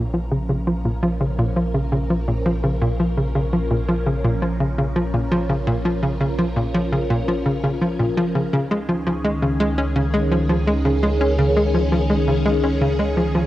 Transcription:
Already playing: sub bass A#1, string machine F3 C#4 A#4
0.14 synth arpeggio sound F3
0.32 synth arpeggio sound C#3
0.49 synth arpeggio sound C#3
0.67 synth arpeggio sound F3
0.85 synth arpeggio sound A#2
1.03 synth arpeggio sound F3
1.21 synth arpeggio sound C#3
1.39 synth arpeggio sound A#2
1.57 synth arpeggio sound F3
1.75 synth arpeggio sound C#3
1.92 synth arpeggio sound C#3
2.10 synth arpeggio sound F3
2.28 synth arpeggio sound A#2
2.46 synth arpeggio sound F3
2.64 synth arpeggio sound C#3
2.82 synth arpeggio sound A#2
3.00 synth arpeggio sound F3
3.17 synth arpeggio sound C#3
3.35 synth arpeggio sound C#3
3.53 synth arpeggio sound F3
3.71 synth arpeggio sound A#2
3.89 synth arpeggio sound F3
4.07 synth arpeggio sound C#3
4.24 synth arpeggio sound A#2
4.42 synth arpeggio sound F3
4.60 synth arpeggio sound C#3
4.78 synth arpeggio sound C#3
4.96 synth arpeggio sound F3
5.14 synth arpeggio sound A#2
5.32 synth arpeggio sound F3
5.49 synth arpeggio sound C#3
5.67 synth arpeggio sound A#2
5.85 synth arpeggio sound F3
6.03 synth arpeggio sound C#3
6.21 synth arpeggio sound C#3
6.39 synth arpeggio sound F3
6.56 synth arpeggio sound A#2
6.74 synth arpeggio sound F3
6.92 synth arpeggio sound C#3
7.10 synth arpeggio sound A#2
7.28 synth arpeggio sound F3
7.46 synth arpeggio sound C#3
7.64 synth arpeggio sound C#3
7.81 synth arpeggio sound F3
7.99 synth arpeggio sound A#2
8.17 synth arpeggio sound F3
8.35 synth arpeggio sound C#3
8.53 sub bass C#2, synth arpeggio sound C#3, string machine D#3 C#4 G#4
8.71 synth arpeggio sound G#3
8.89 synth arpeggio sound F3
9.07 synth arpeggio sound F3
9.24 synth arpeggio sound G#3
9.42 synth arpeggio sound C#3
9.60 synth arpeggio sound G#3
9.78 synth arpeggio sound C#4
9.96 synth arpeggio sound C#3
10.14 synth arpeggio sound G#3
10.31 synth arpeggio sound F3
10.49 synth arpeggio sound F3
10.67 synth arpeggio sound G#3
10.85 synth arpeggio sound C#3
11.03 synth arpeggio sound G#3
11.21 synth arpeggio sound C#4
11.39 synth arpeggio sound C#3
11.57 synth arpeggio sound G#3
11.74 synth arpeggio sound F3
11.92 synth arpeggio sound F3
12.10 synth arpeggio sound G#3
12.28 synth arpeggio sound C#3
12.46 synth arpeggio sound G#3
12.64 synth arpeggio sound C#4
12.81 synth arpeggio sound C#3
12.99 synth arpeggio sound G#3
13.17 synth arpeggio sound F3
13.35 synth arpeggio sound F3

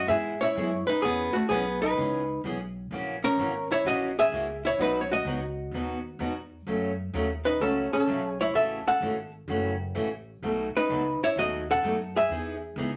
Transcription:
0.08 upright bass G#2, steel-string acoustic guitar E3 G#3 B3 E4 G#4, hollow-body jazz guitar G#4 E5
0.41 hollow-body jazz guitar E4 C#5
0.55 upright bass F#2, steel-string acoustic guitar E3 G#3 B3 E4 G#4
0.87 hollow-body jazz guitar D#4 B4
1.02 upright bass E2, steel-string acoustic guitar E3 B3 C#4 G#4, hollow-body jazz guitar B3 G#4
1.33 hollow-body jazz guitar A3 F#4, muted upright bass stroke
1.49 upright bass B1, steel-string acoustic guitar E3 B3 C#4 G#4, hollow-body jazz guitar B3 G#4
1.82 hollow-body jazz guitar D#4 B4
1.97 upright bass C#2, steel-string acoustic guitar E3 B3 C#4 G#4
2.44 upright bass B1, steel-string acoustic guitar E3 B3 C#4 G#4
2.91 upright bass A#1, steel-string acoustic guitar C#3 E3 A#3 C#4 F#4
3.24 hollow-body jazz guitar C#4 A#4
3.38 upright bass G#1, steel-string acoustic guitar C#3 E3 A#3 C#4 F#4
3.71 hollow-body jazz guitar E4 C#5
3.85 upright bass A#1, steel-string acoustic guitar C#3 E3 A#3 C#4 F#4, hollow-body jazz guitar F#4 D#5
4.19 hollow-body jazz guitar G#4 E5
4.32 upright bass C#2, steel-string acoustic guitar C#3 E3 A#3 C#4 F#4
4.65 hollow-body jazz guitar E4 C#5
4.79 upright bass B1, steel-string acoustic guitar B2 F#3 B3 D#4 F#4, hollow-body jazz guitar D#4 B4
5.01 hollow-body jazz guitar C#5
5.12 hollow-body jazz guitar F#4 D#5
5.25 upright bass C#2, steel-string acoustic guitar B2 F#3 B3 D#4 F#4
5.71 upright bass D#2, steel-string acoustic guitar B2 F#3 B3 D#4 F#4
6.19 upright bass E2, steel-string acoustic guitar B2 F#3 B3 D#4 F#4
6.67 upright bass F#2, steel-string acoustic guitar C#3 F#3 A3 C#4 F#4
7.14 upright bass D#2, steel-string acoustic guitar C#3 F#3 A3 C#4 F#4
7.45 hollow-body jazz guitar D#4 B4
7.60 upright bass C#2, steel-string acoustic guitar C#3 F#3 A3 C#4 F#4, hollow-body jazz guitar C#4 A4
7.93 hollow-body jazz guitar C#4 A4, muted upright bass stroke
8.08 upright bass B1, steel-string acoustic guitar C#3 F#3 A3 C#4 F#4
8.29 hollow-body jazz guitar G#4
8.41 hollow-body jazz guitar E4 C#5
8.54 upright bass A1, steel-string acoustic guitar C#3 E3 A3 C#4 F#4, hollow-body jazz guitar A4 E5
8.87 hollow-body jazz guitar A4 F#5, muted upright bass stroke
9.00 upright bass G#1, steel-string acoustic guitar C#3 E3 A3 C#4 F#4
9.48 upright bass F#1, steel-string acoustic guitar C#3 E3 A3 C#4 F#4
9.95 upright bass A1, steel-string acoustic guitar C#3 E3 A3 C#4 F#4
10.42 upright bass B1, steel-string acoustic guitar B2 F#3 A3 D#4 F#4
10.75 hollow-body jazz guitar D#4 B4, muted upright bass stroke
10.89 upright bass C#2, steel-string acoustic guitar B2 F#3 A3 D#4 F#4
11.21 hollow-body jazz guitar E4 C#5, muted upright bass stroke
11.36 upright bass D#2, steel-string acoustic guitar B2 F#3 A3 D#4 F#4, hollow-body jazz guitar F#4 D#5
11.71 hollow-body jazz guitar A4 F#5
11.83 upright bass F#2, steel-string acoustic guitar B2 F#3 A3 D#4 F#4
12.16 hollow-body jazz guitar G#4 E5
12.29 upright bass E2, steel-string acoustic guitar E3 B3 D#4 G#4
12.76 upright bass C#2, steel-string acoustic guitar E3 B3 D#4 G#4

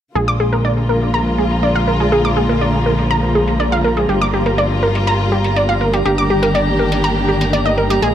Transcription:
0.15 analog synth bass A#1, string section D3 F3 G#3 A#3 F4, synth pluck G#4, synth texture A#5, closed hi-hat
0.28 synth pluck D6
0.40 synth pluck G#4
0.53 synth pluck A#4, closed hi-hat
0.65 synth pluck D5
0.89 synth pluck A#4
1.02 closed hi-hat
1.14 synth pluck A#5
1.38 synth pluck G#4
1.51 closed hi-hat
1.63 synth pluck D5, closed hi-hat
1.76 synth pluck F5
1.88 synth pluck A#4
2.00 synth pluck G#4, closed hi-hat
2.12 synth pluck G#4, closed hi-hat
2.25 synth pluck D6
2.37 synth pluck G#4
2.49 synth pluck A#4, closed hi-hat
2.61 synth pluck D5, closed hi-hat
2.86 synth pluck A#4
2.98 closed hi-hat
3.11 synth pluck A#5, closed hi-hat
3.35 synth pluck G#4
3.48 closed hi-hat
3.60 synth pluck D5, closed hi-hat
3.72 synth pluck F5
3.84 synth pluck A#4
3.97 synth pluck G#4, closed hi-hat
4.09 analog synth bass G1, string section G3 F4, synth pluck G4, closed hi-hat
4.22 synth pluck D6
4.34 synth pluck G4
4.46 synth pluck A#4, closed hi-hat
4.58 synth pluck D5, closed hi-hat
4.83 synth pluck A#4
4.95 closed hi-hat
5.07 synth pluck A#5, closed hi-hat
5.32 synth pluck G4
5.44 closed hi-hat
5.56 synth pluck D5, closed hi-hat
5.69 synth pluck F5
5.81 synth pluck A#4
5.94 synth pluck G4, closed hi-hat
6.05 analog synth bass G1, string section D#3 G3 A#3 D4 G4, synth pluck G4, closed hi-hat
6.18 synth pluck D6
6.30 synth pluck G4
6.43 synth pluck A#4, closed hi-hat
6.55 synth pluck D5, closed hi-hat
6.79 synth pluck A#4
6.92 closed hi-hat
7.04 synth pluck A#5, closed hi-hat
7.29 synth pluck G4
7.41 closed hi-hat
7.53 synth pluck D5, closed hi-hat
7.66 synth pluck D#5
7.78 synth pluck A#4
7.90 synth pluck G4, closed hi-hat
8.02 analog synth bass A#1, string section D3 F3 G#3 F4, synth pluck G#4, closed hi-hat

